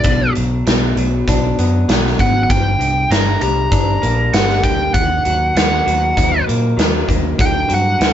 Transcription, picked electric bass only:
0.04 0.28 B1 medium
0.38 0.61 B1 medium
0.67 0.91 B1 medium
0.97 1.21 B1 medium
1.27 1.51 B1 medium
1.59 1.82 F#2 medium
1.88 2.13 B1 medium
2.20 2.44 G#1 medium
2.50 2.74 G1 medium
2.79 3.04 C2 medium
3.10 3.35 G1 medium
3.42 3.66 C2 medium
3.72 3.96 G1 medium
4.03 4.27 A#1 medium
4.34 4.58 G1 medium
4.63 4.87 D2 medium
4.94 5.18 D#2 medium
5.26 5.50 D#2 medium
5.55 5.79 D#2 medium
5.87 6.11 D#2 medium
6.17 6.41 D#2 medium
6.49 6.72 A#2 medium
6.78 7.01 D#2 medium
7.08 7.32 D#2 medium
7.39 7.63 D2 medium
7.71 7.94 G2 medium
8.01 8.13 D2 medium

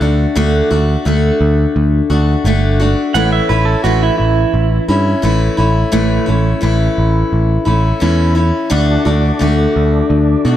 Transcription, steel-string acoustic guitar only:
0.01 0.35 A3 soft
0.01 0.35 D4 soft
0.01 0.36 F#4 medium
0.35 0.70 D3 medium
0.35 0.71 A3 medium
0.35 0.71 D4 medium
0.35 0.69 F#4 medium
0.71 1.05 A3 soft
0.71 1.06 D4 medium
0.71 1.05 F#4 medium
1.05 2.10 D3 medium
1.05 2.12 A3 medium
1.05 2.10 D4 medium
1.05 2.09 F#4 medium
2.10 2.45 A3 soft
2.10 2.45 D4 medium
2.10 2.45 F#4 medium
2.45 2.80 D3 medium
2.45 2.80 A3 medium
2.45 2.80 D4 medium
2.45 2.78 F#4 medium
2.80 3.14 A3 soft
2.80 3.15 D4 soft
2.80 3.14 F#4 medium
3.15 3.49 A2 medium
3.15 3.50 E3 medium
3.15 3.50 A3 medium
3.15 3.49 C#4 loud
3.15 3.48 E4 loud
3.49 3.83 A3 medium
3.49 3.84 C#4 medium
3.49 3.84 E4 medium
3.84 4.88 E3 medium
3.84 4.90 A3 medium
3.84 4.89 C#4 medium
3.84 4.87 E4 medium
4.88 5.22 A3 soft
4.88 5.22 C#4 medium
4.88 5.23 E4 medium
5.22 5.58 E3 medium
5.22 5.58 A3 medium
5.22 5.57 C#4 medium
5.22 5.56 E4 medium
5.57 5.91 A3 soft
5.57 5.91 C#4 soft
5.57 5.92 E4 medium
5.92 6.27 A2 medium
5.92 6.27 E3 medium
5.92 6.28 A3 medium
5.92 6.26 C#4 medium
5.92 6.25 E4 medium
6.26 6.60 A3 soft
6.26 6.61 C#4 soft
6.26 6.62 E4 medium
6.61 7.66 E3 medium
6.61 7.67 A3 medium
6.61 7.65 C#4 medium
6.61 7.64 E4 medium
7.65 8.00 A3 soft
7.65 8.00 C#4 soft
7.65 8.01 E4 soft
8.00 8.36 E3 medium
8.00 8.36 A3 medium
8.00 8.35 C#4 medium
8.00 8.34 E4 medium
8.35 8.69 A3 soft
8.35 8.70 C#4 soft
8.35 8.71 E4 medium
8.70 9.05 D3 medium
8.70 9.05 A3 medium
8.70 9.05 D4 medium
8.70 9.04 F#4 medium
9.05 9.39 A3 soft
9.05 9.40 D4 medium
9.05 9.40 F#4 medium
9.39 10.44 D3 medium
9.39 10.47 A3 medium
9.39 10.46 D4 medium
9.39 10.44 F#4 medium
10.45 10.57 A3 soft
10.45 10.57 D4 soft
10.45 10.57 F#4 soft

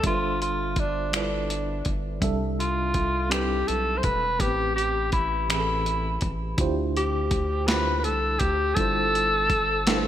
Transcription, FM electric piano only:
0.03 0.81 G3 medium
0.03 0.82 D4 medium
0.03 0.83 F4 medium
0.03 0.83 E5 medium
0.07 0.84 A4 medium
0.07 0.13 B4 medium
0.14 0.87 C5 medium
1.12 1.91 G3 medium
1.12 1.91 D4 medium
1.12 1.91 E4 medium
1.12 1.92 F4 soft
1.12 1.92 A4 soft
1.12 1.92 B4 medium
2.20 2.99 C3 medium
2.20 2.99 G3 medium
2.20 3.00 D4 medium
2.20 3.01 A4 medium
2.20 3.00 E5 medium
3.29 4.09 G3 medium
3.29 4.08 C4 medium
3.29 4.09 D4 medium
3.29 3.39 D#4 soft
3.34 4.11 B4 medium
3.39 4.13 E4 medium
4.39 5.18 A2 medium
4.39 5.18 E3 medium
4.39 4.47 B3 medium
4.39 5.19 G4 medium
4.39 5.20 B4 medium
4.48 5.22 C4 medium
5.48 6.27 A2 medium
5.48 6.27 E3 medium
5.48 6.28 C4 medium
5.48 6.28 G4 medium
5.53 5.58 G#4 medium
5.59 6.32 A4 medium
6.57 7.36 D3 medium
6.57 7.36 D4 medium
6.57 7.37 E4 medium
6.57 7.37 F4 medium
6.57 7.38 G4 medium
6.57 7.38 C5 medium
7.68 8.46 D3 medium
7.68 8.46 D4 medium
7.68 8.46 E4 medium
7.68 8.47 F4 medium
7.68 8.47 G4 medium
7.72 8.48 C5 medium
8.76 9.54 G3 medium
8.76 9.55 D4 medium
8.76 9.55 E4 medium
8.76 9.56 F4 medium
8.80 9.56 A4 medium
8.80 9.57 C5 medium
9.86 10.08 G3 medium
9.86 10.08 D4 medium
9.86 10.08 E4 medium
9.86 10.08 F4 medium
9.86 10.08 A4 medium
9.91 9.95 B4 medium
9.97 10.08 C5 medium

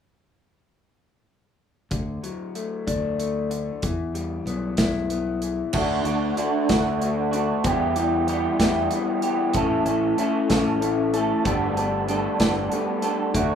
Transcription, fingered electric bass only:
1.91 2.19 D2 medium
2.87 3.70 D2 medium
3.83 4.38 E2 medium
4.46 4.74 B1 medium
4.79 5.61 B1 medium
5.73 6.01 D2 medium
6.05 6.33 D2 medium
6.70 7.52 D2 medium
7.64 8.46 E2 loud
8.59 8.87 E2 medium
9.54 9.82 A1 medium
9.85 10.13 A1 medium
10.50 11.32 A1 medium
11.45 12.26 G1 loud
12.40 12.67 G1 medium
13.34 13.55 D2 medium

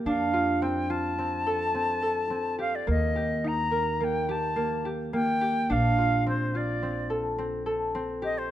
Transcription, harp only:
0.00 1.53 A#3 medium
0.00 0.12 D#4 medium
0.00 2.14 G4 medium
0.00 0.21 A#4 medium
0.06 2.86 D4 medium
0.33 0.89 F4 medium
0.62 1.18 C4 medium
0.90 3.42 F4 medium
1.19 1.74 C4 medium
1.47 2.02 A4 medium
1.74 2.30 C4 medium
2.03 2.93 A4 medium
2.30 5.30 C4 medium
2.59 3.15 G4 medium
2.87 4.00 A#3 medium
3.16 4.28 G4 medium
3.44 5.76 D#4 medium
3.71 5.84 A#4 medium
4.00 4.56 A#3 medium
4.29 4.85 G4 medium
4.56 5.13 A#3 medium
4.85 5.41 G4 medium
5.13 7.16 A#3 medium
5.41 7.77 G4 medium
5.70 8.50 D4 medium
5.98 6.54 F4 medium
6.27 6.82 C4 medium
6.55 8.51 F4 medium
6.83 7.38 C4 medium
7.10 7.66 A4 medium
7.38 7.94 C4 medium
7.66 8.51 A4 medium
7.95 8.51 C4 medium
8.22 8.51 G4 medium

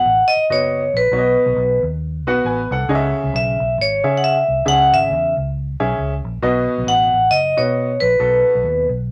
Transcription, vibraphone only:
0.00 0.27 F#5 loud
0.28 0.39 D#5 loud
0.52 0.97 C#5 medium
0.97 1.80 B4 medium
3.36 3.76 E5 medium
3.82 4.19 C#5 medium
4.17 4.22 F#5 medium
4.24 4.64 E5 loud
4.68 4.94 F#5 loud
4.94 5.34 E5 medium
6.88 7.28 F#5 loud
7.31 7.58 D#5 loud
7.58 8.03 C#5 medium
8.00 8.85 B4 medium

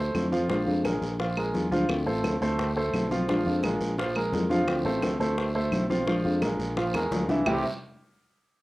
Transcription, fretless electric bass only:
0.00 0.12 D2 loud
0.14 0.50 F2 medium
0.48 0.66 A#1 loud
0.67 0.83 F2 medium
0.84 1.01 A#1 loud
1.01 1.51 A#1 loud
1.54 1.70 E2 medium
1.71 1.87 D2 medium
1.89 2.05 D2 loud
2.06 2.23 A1 loud
2.24 2.40 D2 loud
2.41 2.91 D2 medium
2.93 3.28 B1 medium
3.28 3.45 A#1 loud
3.46 3.62 F2 loud
3.63 3.80 A#1 loud
3.81 4.30 A#1 loud
4.32 4.67 F2 medium
4.67 4.84 D2 loud
4.85 5.01 A1 loud
5.02 5.19 D2 medium
5.20 5.69 D2 loud
5.72 6.07 B1 medium
6.07 6.24 A#1 loud
6.25 6.41 F2 loud
6.42 6.58 A#1 medium
6.59 6.92 A#1 medium
6.94 7.10 E2 medium
7.11 7.27 D2 medium
7.28 7.44 C2 medium
7.47 7.63 C2 medium

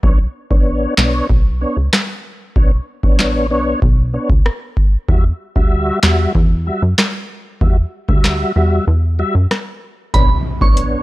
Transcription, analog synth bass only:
0.03 0.27 B1 loud
0.51 0.86 A1 medium
0.98 1.22 B1 loud
1.30 1.65 B1 loud
1.77 1.89 C#2 medium
2.56 2.80 B1 loud
3.03 3.52 A1 medium
3.51 3.75 B1 medium
3.82 4.18 B1 loud
4.30 4.42 C#2 medium
5.09 5.32 E2 medium
5.56 5.92 D2 medium
6.03 6.27 E2 loud
6.35 6.71 E2 loud
6.82 6.94 F#2 medium
7.61 7.85 E2 loud
8.09 8.44 D2 medium
8.56 8.80 E2 medium
8.87 9.23 E2 loud
9.35 9.47 F#2 medium
10.14 10.38 B1 loud
10.61 10.97 A1 medium

